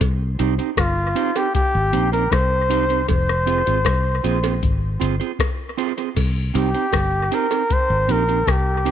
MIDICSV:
0, 0, Header, 1, 5, 480
1, 0, Start_track
1, 0, Key_signature, -3, "minor"
1, 0, Tempo, 769329
1, 7, Time_signature, 4, 2, 24, 8
1, 5560, End_track
2, 0, Start_track
2, 0, Title_t, "Flugelhorn"
2, 0, Program_c, 0, 56
2, 496, Note_on_c, 0, 65, 93
2, 854, Note_on_c, 0, 67, 84
2, 864, Note_off_c, 0, 65, 0
2, 962, Note_off_c, 0, 67, 0
2, 966, Note_on_c, 0, 67, 97
2, 1305, Note_off_c, 0, 67, 0
2, 1329, Note_on_c, 0, 70, 96
2, 1446, Note_on_c, 0, 72, 107
2, 1455, Note_off_c, 0, 70, 0
2, 1922, Note_off_c, 0, 72, 0
2, 1926, Note_on_c, 0, 72, 92
2, 2862, Note_off_c, 0, 72, 0
2, 4100, Note_on_c, 0, 67, 89
2, 4582, Note_on_c, 0, 70, 95
2, 4591, Note_off_c, 0, 67, 0
2, 4823, Note_on_c, 0, 72, 113
2, 4832, Note_off_c, 0, 70, 0
2, 5064, Note_on_c, 0, 70, 101
2, 5073, Note_off_c, 0, 72, 0
2, 5308, Note_on_c, 0, 67, 86
2, 5317, Note_off_c, 0, 70, 0
2, 5560, Note_off_c, 0, 67, 0
2, 5560, End_track
3, 0, Start_track
3, 0, Title_t, "Clean electric guitar"
3, 0, Program_c, 1, 27
3, 243, Note_on_c, 1, 60, 78
3, 244, Note_on_c, 1, 63, 89
3, 247, Note_on_c, 1, 67, 81
3, 249, Note_on_c, 1, 72, 81
3, 332, Note_off_c, 1, 60, 0
3, 332, Note_off_c, 1, 63, 0
3, 334, Note_off_c, 1, 67, 0
3, 335, Note_off_c, 1, 72, 0
3, 364, Note_on_c, 1, 72, 56
3, 366, Note_on_c, 1, 67, 54
3, 369, Note_on_c, 1, 63, 56
3, 372, Note_on_c, 1, 60, 47
3, 432, Note_off_c, 1, 67, 0
3, 432, Note_off_c, 1, 72, 0
3, 434, Note_off_c, 1, 63, 0
3, 436, Note_off_c, 1, 60, 0
3, 718, Note_on_c, 1, 60, 84
3, 721, Note_on_c, 1, 63, 79
3, 724, Note_on_c, 1, 67, 89
3, 726, Note_on_c, 1, 72, 97
3, 809, Note_off_c, 1, 60, 0
3, 811, Note_off_c, 1, 63, 0
3, 813, Note_off_c, 1, 67, 0
3, 813, Note_off_c, 1, 72, 0
3, 843, Note_on_c, 1, 72, 60
3, 847, Note_on_c, 1, 67, 65
3, 850, Note_on_c, 1, 63, 60
3, 851, Note_on_c, 1, 60, 52
3, 911, Note_off_c, 1, 72, 0
3, 913, Note_off_c, 1, 67, 0
3, 915, Note_off_c, 1, 60, 0
3, 915, Note_off_c, 1, 63, 0
3, 1202, Note_on_c, 1, 60, 78
3, 1206, Note_on_c, 1, 63, 78
3, 1207, Note_on_c, 1, 67, 82
3, 1209, Note_on_c, 1, 72, 77
3, 1291, Note_off_c, 1, 60, 0
3, 1293, Note_off_c, 1, 63, 0
3, 1294, Note_off_c, 1, 67, 0
3, 1295, Note_off_c, 1, 72, 0
3, 1322, Note_on_c, 1, 72, 66
3, 1326, Note_on_c, 1, 67, 59
3, 1329, Note_on_c, 1, 63, 53
3, 1331, Note_on_c, 1, 60, 55
3, 1391, Note_off_c, 1, 72, 0
3, 1393, Note_off_c, 1, 67, 0
3, 1394, Note_off_c, 1, 63, 0
3, 1395, Note_off_c, 1, 60, 0
3, 1682, Note_on_c, 1, 60, 81
3, 1682, Note_on_c, 1, 63, 87
3, 1687, Note_on_c, 1, 67, 95
3, 1688, Note_on_c, 1, 72, 87
3, 1771, Note_off_c, 1, 60, 0
3, 1772, Note_off_c, 1, 63, 0
3, 1774, Note_off_c, 1, 67, 0
3, 1774, Note_off_c, 1, 72, 0
3, 1803, Note_on_c, 1, 72, 67
3, 1805, Note_on_c, 1, 67, 68
3, 1807, Note_on_c, 1, 63, 55
3, 1810, Note_on_c, 1, 60, 60
3, 1871, Note_off_c, 1, 72, 0
3, 1872, Note_off_c, 1, 67, 0
3, 1873, Note_off_c, 1, 63, 0
3, 1875, Note_off_c, 1, 60, 0
3, 2161, Note_on_c, 1, 60, 72
3, 2164, Note_on_c, 1, 65, 82
3, 2165, Note_on_c, 1, 68, 81
3, 2168, Note_on_c, 1, 72, 85
3, 2251, Note_off_c, 1, 60, 0
3, 2252, Note_off_c, 1, 65, 0
3, 2253, Note_off_c, 1, 68, 0
3, 2255, Note_off_c, 1, 72, 0
3, 2285, Note_on_c, 1, 72, 64
3, 2288, Note_on_c, 1, 68, 63
3, 2289, Note_on_c, 1, 65, 64
3, 2292, Note_on_c, 1, 60, 58
3, 2352, Note_off_c, 1, 72, 0
3, 2354, Note_off_c, 1, 65, 0
3, 2354, Note_off_c, 1, 68, 0
3, 2356, Note_off_c, 1, 60, 0
3, 2643, Note_on_c, 1, 60, 72
3, 2645, Note_on_c, 1, 65, 88
3, 2648, Note_on_c, 1, 72, 75
3, 2649, Note_on_c, 1, 68, 98
3, 2732, Note_off_c, 1, 60, 0
3, 2733, Note_off_c, 1, 65, 0
3, 2735, Note_off_c, 1, 68, 0
3, 2735, Note_off_c, 1, 72, 0
3, 2763, Note_on_c, 1, 72, 62
3, 2767, Note_on_c, 1, 68, 56
3, 2769, Note_on_c, 1, 65, 59
3, 2773, Note_on_c, 1, 60, 55
3, 2831, Note_off_c, 1, 72, 0
3, 2833, Note_off_c, 1, 68, 0
3, 2834, Note_off_c, 1, 65, 0
3, 2836, Note_off_c, 1, 60, 0
3, 3118, Note_on_c, 1, 60, 71
3, 3121, Note_on_c, 1, 65, 76
3, 3124, Note_on_c, 1, 68, 72
3, 3128, Note_on_c, 1, 72, 80
3, 3209, Note_off_c, 1, 60, 0
3, 3211, Note_off_c, 1, 65, 0
3, 3212, Note_off_c, 1, 68, 0
3, 3214, Note_off_c, 1, 72, 0
3, 3243, Note_on_c, 1, 72, 72
3, 3248, Note_on_c, 1, 68, 65
3, 3249, Note_on_c, 1, 65, 55
3, 3251, Note_on_c, 1, 60, 55
3, 3311, Note_off_c, 1, 72, 0
3, 3314, Note_off_c, 1, 65, 0
3, 3314, Note_off_c, 1, 68, 0
3, 3315, Note_off_c, 1, 60, 0
3, 3603, Note_on_c, 1, 60, 90
3, 3605, Note_on_c, 1, 65, 84
3, 3607, Note_on_c, 1, 68, 90
3, 3610, Note_on_c, 1, 72, 101
3, 3692, Note_off_c, 1, 60, 0
3, 3693, Note_off_c, 1, 65, 0
3, 3694, Note_off_c, 1, 68, 0
3, 3695, Note_off_c, 1, 72, 0
3, 3727, Note_on_c, 1, 72, 65
3, 3730, Note_on_c, 1, 65, 55
3, 3730, Note_on_c, 1, 68, 62
3, 3734, Note_on_c, 1, 60, 54
3, 3794, Note_off_c, 1, 72, 0
3, 3795, Note_off_c, 1, 65, 0
3, 3795, Note_off_c, 1, 68, 0
3, 3797, Note_off_c, 1, 60, 0
3, 4080, Note_on_c, 1, 60, 80
3, 4083, Note_on_c, 1, 63, 81
3, 4084, Note_on_c, 1, 67, 90
3, 4088, Note_on_c, 1, 72, 79
3, 4170, Note_off_c, 1, 60, 0
3, 4172, Note_off_c, 1, 63, 0
3, 4173, Note_off_c, 1, 67, 0
3, 4174, Note_off_c, 1, 72, 0
3, 4208, Note_on_c, 1, 72, 63
3, 4210, Note_on_c, 1, 67, 60
3, 4211, Note_on_c, 1, 63, 52
3, 4214, Note_on_c, 1, 60, 58
3, 4274, Note_off_c, 1, 72, 0
3, 4275, Note_off_c, 1, 63, 0
3, 4275, Note_off_c, 1, 67, 0
3, 4277, Note_off_c, 1, 60, 0
3, 4563, Note_on_c, 1, 60, 77
3, 4564, Note_on_c, 1, 63, 74
3, 4566, Note_on_c, 1, 67, 93
3, 4571, Note_on_c, 1, 72, 94
3, 4652, Note_off_c, 1, 60, 0
3, 4653, Note_off_c, 1, 63, 0
3, 4654, Note_off_c, 1, 67, 0
3, 4656, Note_off_c, 1, 72, 0
3, 4685, Note_on_c, 1, 72, 61
3, 4688, Note_on_c, 1, 67, 59
3, 4690, Note_on_c, 1, 63, 53
3, 4692, Note_on_c, 1, 60, 57
3, 4752, Note_off_c, 1, 72, 0
3, 4754, Note_off_c, 1, 67, 0
3, 4755, Note_off_c, 1, 63, 0
3, 4756, Note_off_c, 1, 60, 0
3, 5042, Note_on_c, 1, 60, 70
3, 5045, Note_on_c, 1, 63, 77
3, 5048, Note_on_c, 1, 67, 86
3, 5049, Note_on_c, 1, 72, 81
3, 5132, Note_off_c, 1, 60, 0
3, 5133, Note_off_c, 1, 63, 0
3, 5135, Note_off_c, 1, 67, 0
3, 5135, Note_off_c, 1, 72, 0
3, 5166, Note_on_c, 1, 72, 66
3, 5169, Note_on_c, 1, 67, 64
3, 5172, Note_on_c, 1, 60, 59
3, 5172, Note_on_c, 1, 63, 62
3, 5233, Note_off_c, 1, 72, 0
3, 5235, Note_off_c, 1, 67, 0
3, 5236, Note_off_c, 1, 60, 0
3, 5236, Note_off_c, 1, 63, 0
3, 5523, Note_on_c, 1, 60, 78
3, 5525, Note_on_c, 1, 63, 85
3, 5527, Note_on_c, 1, 67, 86
3, 5530, Note_on_c, 1, 72, 82
3, 5560, Note_off_c, 1, 60, 0
3, 5560, Note_off_c, 1, 63, 0
3, 5560, Note_off_c, 1, 67, 0
3, 5560, Note_off_c, 1, 72, 0
3, 5560, End_track
4, 0, Start_track
4, 0, Title_t, "Fingered electric bass"
4, 0, Program_c, 2, 33
4, 6, Note_on_c, 2, 36, 104
4, 225, Note_off_c, 2, 36, 0
4, 248, Note_on_c, 2, 36, 112
4, 360, Note_off_c, 2, 36, 0
4, 483, Note_on_c, 2, 31, 87
4, 704, Note_off_c, 2, 31, 0
4, 1091, Note_on_c, 2, 32, 95
4, 1197, Note_off_c, 2, 32, 0
4, 1204, Note_on_c, 2, 34, 89
4, 1424, Note_off_c, 2, 34, 0
4, 1446, Note_on_c, 2, 36, 99
4, 1902, Note_off_c, 2, 36, 0
4, 1927, Note_on_c, 2, 29, 103
4, 2266, Note_off_c, 2, 29, 0
4, 2291, Note_on_c, 2, 32, 80
4, 2397, Note_off_c, 2, 32, 0
4, 2405, Note_on_c, 2, 36, 100
4, 2625, Note_off_c, 2, 36, 0
4, 2646, Note_on_c, 2, 34, 83
4, 2866, Note_off_c, 2, 34, 0
4, 2889, Note_on_c, 2, 32, 91
4, 3107, Note_off_c, 2, 32, 0
4, 3128, Note_on_c, 2, 31, 85
4, 3240, Note_off_c, 2, 31, 0
4, 3847, Note_on_c, 2, 36, 101
4, 4066, Note_off_c, 2, 36, 0
4, 4087, Note_on_c, 2, 36, 112
4, 4199, Note_off_c, 2, 36, 0
4, 4325, Note_on_c, 2, 31, 91
4, 4545, Note_off_c, 2, 31, 0
4, 4929, Note_on_c, 2, 32, 84
4, 5036, Note_off_c, 2, 32, 0
4, 5044, Note_on_c, 2, 34, 90
4, 5264, Note_off_c, 2, 34, 0
4, 5287, Note_on_c, 2, 36, 93
4, 5560, Note_off_c, 2, 36, 0
4, 5560, End_track
5, 0, Start_track
5, 0, Title_t, "Drums"
5, 5, Note_on_c, 9, 36, 111
5, 5, Note_on_c, 9, 42, 91
5, 7, Note_on_c, 9, 56, 67
5, 67, Note_off_c, 9, 36, 0
5, 68, Note_off_c, 9, 42, 0
5, 69, Note_off_c, 9, 56, 0
5, 245, Note_on_c, 9, 42, 73
5, 307, Note_off_c, 9, 42, 0
5, 367, Note_on_c, 9, 42, 53
5, 430, Note_off_c, 9, 42, 0
5, 481, Note_on_c, 9, 36, 127
5, 482, Note_on_c, 9, 56, 77
5, 484, Note_on_c, 9, 42, 72
5, 485, Note_on_c, 9, 37, 120
5, 544, Note_off_c, 9, 36, 0
5, 545, Note_off_c, 9, 56, 0
5, 546, Note_off_c, 9, 42, 0
5, 548, Note_off_c, 9, 37, 0
5, 724, Note_on_c, 9, 42, 84
5, 787, Note_off_c, 9, 42, 0
5, 847, Note_on_c, 9, 56, 83
5, 848, Note_on_c, 9, 42, 60
5, 910, Note_off_c, 9, 56, 0
5, 911, Note_off_c, 9, 42, 0
5, 965, Note_on_c, 9, 36, 117
5, 966, Note_on_c, 9, 42, 86
5, 1028, Note_off_c, 9, 36, 0
5, 1028, Note_off_c, 9, 42, 0
5, 1205, Note_on_c, 9, 42, 75
5, 1267, Note_off_c, 9, 42, 0
5, 1331, Note_on_c, 9, 42, 46
5, 1393, Note_off_c, 9, 42, 0
5, 1444, Note_on_c, 9, 36, 114
5, 1447, Note_on_c, 9, 42, 69
5, 1449, Note_on_c, 9, 56, 68
5, 1451, Note_on_c, 9, 37, 91
5, 1506, Note_off_c, 9, 36, 0
5, 1510, Note_off_c, 9, 42, 0
5, 1512, Note_off_c, 9, 56, 0
5, 1513, Note_off_c, 9, 37, 0
5, 1687, Note_on_c, 9, 42, 77
5, 1750, Note_off_c, 9, 42, 0
5, 1809, Note_on_c, 9, 42, 49
5, 1871, Note_off_c, 9, 42, 0
5, 1925, Note_on_c, 9, 42, 84
5, 1925, Note_on_c, 9, 56, 69
5, 1926, Note_on_c, 9, 36, 106
5, 1987, Note_off_c, 9, 42, 0
5, 1987, Note_off_c, 9, 56, 0
5, 1988, Note_off_c, 9, 36, 0
5, 2055, Note_on_c, 9, 37, 69
5, 2117, Note_off_c, 9, 37, 0
5, 2167, Note_on_c, 9, 42, 76
5, 2229, Note_off_c, 9, 42, 0
5, 2290, Note_on_c, 9, 42, 49
5, 2352, Note_off_c, 9, 42, 0
5, 2401, Note_on_c, 9, 56, 71
5, 2403, Note_on_c, 9, 36, 127
5, 2406, Note_on_c, 9, 42, 76
5, 2408, Note_on_c, 9, 37, 107
5, 2463, Note_off_c, 9, 56, 0
5, 2466, Note_off_c, 9, 36, 0
5, 2468, Note_off_c, 9, 42, 0
5, 2470, Note_off_c, 9, 37, 0
5, 2648, Note_on_c, 9, 42, 76
5, 2710, Note_off_c, 9, 42, 0
5, 2768, Note_on_c, 9, 42, 64
5, 2768, Note_on_c, 9, 56, 88
5, 2831, Note_off_c, 9, 42, 0
5, 2831, Note_off_c, 9, 56, 0
5, 2887, Note_on_c, 9, 36, 117
5, 2888, Note_on_c, 9, 42, 74
5, 2949, Note_off_c, 9, 36, 0
5, 2950, Note_off_c, 9, 42, 0
5, 3128, Note_on_c, 9, 42, 79
5, 3190, Note_off_c, 9, 42, 0
5, 3250, Note_on_c, 9, 42, 44
5, 3312, Note_off_c, 9, 42, 0
5, 3364, Note_on_c, 9, 36, 120
5, 3368, Note_on_c, 9, 42, 73
5, 3368, Note_on_c, 9, 56, 69
5, 3372, Note_on_c, 9, 37, 95
5, 3427, Note_off_c, 9, 36, 0
5, 3431, Note_off_c, 9, 42, 0
5, 3431, Note_off_c, 9, 56, 0
5, 3434, Note_off_c, 9, 37, 0
5, 3609, Note_on_c, 9, 42, 71
5, 3671, Note_off_c, 9, 42, 0
5, 3730, Note_on_c, 9, 42, 54
5, 3792, Note_off_c, 9, 42, 0
5, 3846, Note_on_c, 9, 36, 114
5, 3846, Note_on_c, 9, 49, 96
5, 3847, Note_on_c, 9, 42, 83
5, 3848, Note_on_c, 9, 56, 61
5, 3909, Note_off_c, 9, 36, 0
5, 3909, Note_off_c, 9, 42, 0
5, 3909, Note_off_c, 9, 49, 0
5, 3910, Note_off_c, 9, 56, 0
5, 4087, Note_on_c, 9, 42, 69
5, 4149, Note_off_c, 9, 42, 0
5, 4208, Note_on_c, 9, 42, 54
5, 4271, Note_off_c, 9, 42, 0
5, 4321, Note_on_c, 9, 56, 74
5, 4323, Note_on_c, 9, 36, 116
5, 4325, Note_on_c, 9, 42, 74
5, 4327, Note_on_c, 9, 37, 117
5, 4384, Note_off_c, 9, 56, 0
5, 4385, Note_off_c, 9, 36, 0
5, 4388, Note_off_c, 9, 42, 0
5, 4389, Note_off_c, 9, 37, 0
5, 4566, Note_on_c, 9, 42, 84
5, 4628, Note_off_c, 9, 42, 0
5, 4685, Note_on_c, 9, 56, 81
5, 4690, Note_on_c, 9, 42, 57
5, 4747, Note_off_c, 9, 56, 0
5, 4752, Note_off_c, 9, 42, 0
5, 4807, Note_on_c, 9, 36, 115
5, 4807, Note_on_c, 9, 42, 80
5, 4869, Note_off_c, 9, 36, 0
5, 4869, Note_off_c, 9, 42, 0
5, 5048, Note_on_c, 9, 42, 78
5, 5110, Note_off_c, 9, 42, 0
5, 5171, Note_on_c, 9, 42, 45
5, 5234, Note_off_c, 9, 42, 0
5, 5285, Note_on_c, 9, 36, 112
5, 5287, Note_on_c, 9, 56, 65
5, 5289, Note_on_c, 9, 42, 75
5, 5292, Note_on_c, 9, 37, 102
5, 5347, Note_off_c, 9, 36, 0
5, 5350, Note_off_c, 9, 56, 0
5, 5351, Note_off_c, 9, 42, 0
5, 5355, Note_off_c, 9, 37, 0
5, 5529, Note_on_c, 9, 42, 69
5, 5560, Note_off_c, 9, 42, 0
5, 5560, End_track
0, 0, End_of_file